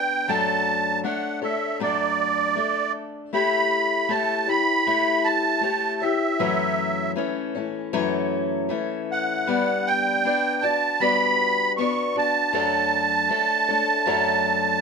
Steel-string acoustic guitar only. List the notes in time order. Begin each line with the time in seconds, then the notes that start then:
Already playing: B3 D4 D5
0.28 F#2 F#3 A3 D4 A4 C#5
1.04 A3 D4 A4 C#5
1.42 A3 D4 A4 C#5
1.79 F#2 F#3 A3 D4 A4
2.56 A3 D4 A4
3.33 A3 E4 G4 C#5
4.09 A3 E4 G4 C#5
4.47 E4 G4 C#5
4.87 A3 E4 G4 C#5
5.61 A3 E4 G4 C#5
6.02 E4 G4 C#5
6.39 F#2 E3 F#3 A3 C#4 C#5
7.16 E3 A3 C#4 C#5
7.55 E3 A3 C#4 C#5
7.93 F#2 E3 F#3 A3 C#4 C#5
8.69 E3 A3 C#4 C#5
9.47 G3 B3 D4 D5
10.25 B3 D4 D5
10.63 D4 F#4 D5
11.00 G3 B3 D4 F#4 D5
11.78 B3 D4 F#4 D5
12.16 D4 F#4 D5
12.53 F#2 F#3 A3 D4 A4 C#5
13.29 A3 D4 A4 C#5
13.69 A3 D4 A4 C#5
14.06 F#2 F#3 A3 D4 A4 C#5